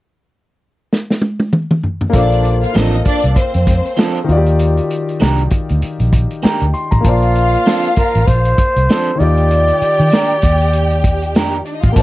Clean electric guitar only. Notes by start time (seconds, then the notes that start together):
2.74 F3 C4 D4 A4
3.97 F3 C4 D4 A4
5.20 A#3 D4 G4 A#4
6.43 A#3 D4 G4 A#4
7.66 F3 C4 D4 A4
8.90 F3 C4 D4 A4
10.12 A#3 D4 G4 A#4
11.35 A#3 D4 G4 A#4